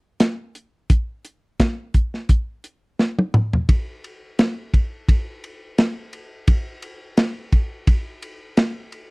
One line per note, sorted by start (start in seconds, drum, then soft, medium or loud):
0.20 snare medium
0.20 closed hi-hat medium
0.55 closed hi-hat medium
0.90 kick loud
0.90 closed hi-hat medium
1.25 closed hi-hat medium
1.60 kick medium
1.60 snare loud
1.60 closed hi-hat medium
1.94 kick medium
1.94 closed hi-hat medium
2.14 snare soft
2.29 kick loud
2.29 closed hi-hat medium
2.64 closed hi-hat medium
2.99 snare medium
3.19 high tom medium
3.34 mid tom medium
3.53 floor tom medium
3.69 kick loud
3.69 ride medium
4.04 ride medium
4.39 snare loud
4.39 ride medium
4.74 kick medium
4.74 ride medium
5.09 kick loud
5.09 ride medium
5.44 ride medium
5.78 snare loud
5.78 ride medium
6.13 ride medium
6.47 kick loud
6.47 ride medium
6.82 ride medium
7.17 snare medium
7.17 ride medium
7.52 kick medium
7.52 ride medium
7.87 kick loud
7.87 ride medium
8.22 ride medium
8.57 snare loud
8.57 ride medium
8.92 ride medium